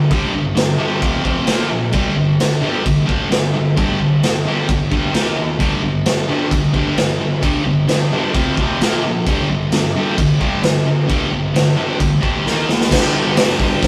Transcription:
0.11 0.33 G2 medium
0.11 0.33 D3 loud
0.11 0.33 G3 loud
0.11 kick loud
0.11 crash medium
0.34 0.54 G2 medium
0.34 0.55 D3 medium
0.55 0.77 G2 medium
0.55 0.77 D3 medium
0.55 snare loud
0.55 crash medium
0.78 1.00 G2 medium
0.78 1.00 D3 medium
0.78 1.01 G3 loud
1.00 1.23 F2 loud
1.00 1.22 C3 loud
1.00 1.23 F3 loud
1.00 kick loud
1.00 crash medium
1.24 1.46 F2 medium
1.24 1.46 C3 loud
1.24 1.45 F3 medium
1.24 kick medium
1.46 1.69 A#2 medium
1.46 1.69 F3 medium
1.46 1.69 A#3 loud
1.46 snare loud
1.46 crash medium
1.70 1.91 A#2 medium
1.70 1.92 F3 medium
1.92 2.15 G2 loud
1.92 2.15 D3 medium
1.92 2.16 G3 loud
1.92 kick loud
1.92 crash medium
2.17 2.37 G2 medium
2.17 2.38 D3 medium
2.40 2.59 G2 medium
2.40 2.60 D3 medium
2.40 snare loud
2.40 crash medium
2.60 2.83 G2 medium
2.60 2.83 D3 medium
2.60 2.84 G3 loud
2.84 3.05 G2 medium
2.84 3.05 D3 medium
2.84 kick loud
2.84 crash medium
3.06 3.29 G2 medium
3.06 3.29 D3 medium
3.06 3.29 G3 medium
3.06 kick medium
3.30 3.52 G2 medium
3.30 3.52 D3 medium
3.30 snare loud
3.30 crash medium
3.54 3.75 G2 medium
3.54 3.75 D3 medium
3.76 3.98 G2 loud
3.76 3.98 D3 medium
3.76 3.99 G3 loud
3.76 kick loud
3.76 crash medium
4.00 4.21 G2 medium
4.00 4.21 D3 medium
4.23 4.44 G2 medium
4.23 4.44 D3 medium
4.23 snare loud
4.23 crash medium
4.46 4.67 G2 medium
4.46 4.67 D3 medium
4.46 4.68 G3 medium
4.69 4.89 G2 medium
4.69 4.89 D3 medium
4.69 kick loud
4.69 crash medium
4.90 5.13 G2 medium
4.90 5.12 D3 medium
4.90 5.12 G3 loud
4.90 kick medium
5.12 5.35 D#3 medium
5.12 5.35 A#3 medium
5.12 5.35 D#4 loud
5.12 snare loud
5.12 crash medium
5.38 5.58 D#3 medium
5.38 5.58 A#3 medium
5.59 5.81 G2 loud
5.59 5.82 D3 medium
5.59 5.82 G3 loud
5.59 kick loud
5.59 crash medium
5.83 6.03 G2 medium
5.83 6.04 D3 medium
6.06 6.27 G2 medium
6.06 6.27 D3 medium
6.06 snare loud
6.06 crash medium
6.29 6.50 G2 medium
6.29 6.51 D3 medium
6.29 6.51 G3 loud
6.51 6.73 G2 medium
6.51 6.74 D3 medium
6.51 kick loud
6.51 crash medium
6.74 6.96 G2 medium
6.74 6.96 D3 medium
6.74 6.96 G3 medium
6.74 kick medium
6.97 7.18 G2 medium
6.97 7.18 D3 medium
6.97 snare loud
6.97 crash medium
7.20 7.41 G2 medium
7.20 7.41 D3 medium
7.42 7.64 G2 loud
7.42 7.64 D3 medium
7.42 7.65 G3 loud
7.42 kick loud
7.42 crash medium
7.65 7.86 G2 medium
7.65 7.86 D3 medium
7.88 8.09 G2 medium
7.88 8.09 D3 medium
7.88 snare loud
7.88 crash medium
8.12 8.34 G2 medium
8.12 8.34 D3 medium
8.12 8.34 G3 medium
8.35 8.56 F2 medium
8.35 8.57 C3 loud
8.35 8.57 F3 loud
8.35 kick loud
8.35 crash medium
8.57 8.80 F2 medium
8.57 8.80 C3 medium
8.57 8.80 F3 loud
8.57 kick medium
8.81 9.03 A#2 medium
8.81 9.03 F3 loud
8.81 9.03 A#3 loud
8.81 snare loud
8.81 crash medium
9.06 9.26 A#2 medium
9.06 9.26 F3 medium
9.27 9.48 G2 medium
9.27 9.49 D3 medium
9.27 9.49 G3 loud
9.27 kick loud
9.27 crash medium
9.50 9.70 G2 medium
9.50 9.71 D3 loud
9.72 9.93 G2 medium
9.72 9.93 D3 medium
9.72 snare loud
9.72 crash medium
9.96 10.17 G2 medium
9.96 10.17 D3 medium
9.96 10.17 G3 loud
10.18 10.38 G2 medium
10.18 10.39 D3 medium
10.18 kick loud
10.18 crash medium
10.39 10.62 G2 medium
10.39 10.62 D3 medium
10.39 10.62 G3 loud
10.39 kick medium
10.63 10.84 G2 medium
10.63 10.84 D3 medium
10.63 snare loud
10.63 crash medium
10.86 11.05 G2 medium
10.86 11.07 D3 medium
11.06 11.29 G2 loud
11.06 11.30 D3 medium
11.06 11.30 G3 loud
11.06 kick loud
11.06 crash medium
11.32 11.53 G2 medium
11.32 11.52 D3 medium
11.55 11.75 G2 medium
11.55 11.75 D3 medium
11.55 snare loud
11.55 crash medium
11.76 11.98 G2 medium
11.76 11.99 D3 medium
11.76 11.99 G3 loud
11.99 12.20 G2 medium
11.99 12.21 D3 medium
11.99 kick loud
11.99 crash medium
12.21 12.44 G2 medium
12.21 12.44 D3 medium
12.21 12.44 G3 medium
12.21 kick medium
12.46 12.68 D#3 medium
12.46 12.68 A#3 medium
12.46 12.69 D#4 loud
12.46 snare medium
12.69 12.90 D#3 medium
12.69 12.90 A#3 medium
12.69 snare medium
12.81 snare medium
12.91 13.37 G2 medium
12.91 13.38 D3 loud
12.91 kick loud
12.91 snare loud
12.91 crash loud
12.96 13.40 G3 loud
13.37 13.88 G2 loud
13.37 13.61 D3 loud
13.37 13.58 G3 loud
13.37 snare loud
13.37 open hi-hat medium
13.59 13.88 D3 medium
13.59 13.88 G3 medium
13.59 kick medium
13.83 kick loud
13.83 snare loud
13.83 open hi-hat medium

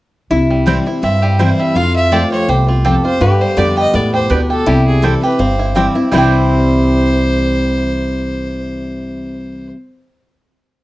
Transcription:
0.30 0.77 C2 medium
0.30 1.00 C3 medium
0.30 0.83 E4 medium
0.30 1.76 E4 medium
0.50 1.00 G3 medium
0.66 0.85 E3 medium
0.66 0.86 G3 medium
0.66 0.76 C4 medium
0.66 1.02 C4 medium
0.66 0.86 C4 medium
0.66 0.77 E4 medium
0.66 0.85 E4 loud
0.66 0.77 C5 medium
0.66 0.77 G5 loud
0.86 1.03 C4 soft
0.86 1.02 E4 medium
0.86 1.36 E4 medium
1.03 1.72 G2 medium
1.03 1.50 G2 medium
1.03 1.55 C4 medium
1.03 1.24 E5 medium
1.22 1.58 G3 medium
1.22 1.40 G4 medium
1.39 1.74 E3 medium
1.39 1.74 G3 medium
1.39 1.49 C4 medium
1.39 1.75 C4 medium
1.39 1.49 E4 medium
1.39 1.76 E4 medium
1.39 1.75 E4 medium
1.39 1.61 C5 medium
1.39 1.50 C5 medium
1.39 1.50 G5 medium
1.60 1.76 G3 medium
1.60 1.78 E5 medium
1.76 2.45 F2 medium
1.76 2.23 F2 medium
1.76 3.21 F4 medium
1.76 2.28 F4 medium
1.76 1.95 F5 loud
1.96 2.13 E5 loud
2.12 2.46 F3 medium
2.12 2.47 A3 medium
2.12 2.22 C4 medium
2.12 2.47 C4 medium
2.12 2.22 F4 medium
2.12 2.47 F4 medium
2.12 2.48 G4 medium
2.12 2.22 C5 medium
2.12 2.31 D5 medium
2.12 2.22 A5 medium
2.32 2.67 C4 medium
2.32 2.50 C#5 medium
2.48 2.95 C2 medium
2.48 2.83 E2 medium
2.48 2.84 G4 medium
2.48 2.68 C5 medium
2.68 3.18 C4 medium
2.68 2.87 F4 soft
2.85 3.19 F2 medium
2.85 2.94 C4 medium
2.85 2.95 F4 medium
2.85 3.21 G4 medium
2.85 3.04 A4 medium
2.85 2.95 C5 medium
2.85 2.95 A5 medium
3.05 3.21 F4 medium
3.05 3.23 C5 loud
3.21 3.90 G2 medium
3.21 3.44 G2 medium
3.21 3.73 D3 medium
3.21 4.71 G4 loud
3.21 3.43 B4 medium
3.41 4.66 G3 medium
3.41 3.59 C5 medium
3.57 3.88 F2 medium
3.57 3.92 D3 medium
3.57 3.92 G3 medium
3.57 3.67 B3 medium
3.57 3.92 B3 medium
3.57 4.10 D4 medium
3.57 3.67 G4 medium
3.57 3.93 G4 medium
3.57 3.77 D5 medium
3.57 3.68 D5 medium
3.57 3.68 G5 loud
3.77 4.13 G4 medium
3.77 3.96 D#5 loud
3.93 4.25 E2 medium
3.93 4.28 A2 loud
3.93 4.46 B3 medium
3.93 4.13 D5 medium
4.14 4.50 G4 medium
4.14 4.32 C5 loud
4.30 4.61 D2 medium
4.30 4.65 B2 medium
4.30 4.40 B3 medium
4.30 4.67 D4 medium
4.30 4.40 G4 medium
4.30 4.50 B4 medium
4.30 4.40 D5 medium
4.30 4.40 G5 medium
4.50 5.23 G4 medium
4.50 4.69 A4 medium
4.66 5.14 C2 medium
4.66 5.36 C3 medium
4.66 5.19 G3 medium
4.66 5.79 E4 medium
4.66 4.86 G4 medium
4.87 5.05 G#4 medium
5.02 5.22 E3 medium
5.02 5.22 G3 medium
5.02 5.13 C4 medium
5.02 5.22 C4 medium
5.02 5.13 E4 medium
5.02 5.56 E4 medium
5.02 5.21 E4 medium
5.02 5.22 A4 medium
5.02 5.13 C5 loud
5.02 5.13 G5 medium
5.22 5.39 C4 soft
5.22 5.39 E4 soft
5.22 5.73 G4 medium
5.22 5.41 B4 medium
5.39 5.87 G1 medium
5.39 6.09 G2 medium
5.39 5.92 C4 medium
5.39 5.76 C5 medium
5.59 5.94 E4 medium
5.75 5.95 E3 medium
5.75 5.95 G3 medium
5.75 5.86 C4 medium
5.75 5.95 C4 medium
5.75 6.10 C4 medium
5.75 5.86 E4 medium
5.75 5.94 E4 medium
5.75 6.12 G4 medium
5.75 5.86 C5 medium
5.75 5.86 G5 medium
5.95 6.12 C4 soft
5.95 6.11 E4 medium
5.95 6.12 E4 medium
6.11 9.69 C2 medium
6.11 9.72 C3 medium
6.11 9.73 E3 medium
6.11 9.69 G3 medium
6.11 9.74 G3 medium
6.11 9.72 C4 medium
6.11 9.75 C4 loud
6.11 9.71 C4 medium
6.11 9.69 E4 medium
6.11 9.74 E4 medium
6.11 9.75 E4 medium
6.11 9.69 C5 loud
6.11 9.75 C5 medium
6.11 9.75 G5 medium
6.16 9.73 E4 medium
6.16 9.75 G4 medium

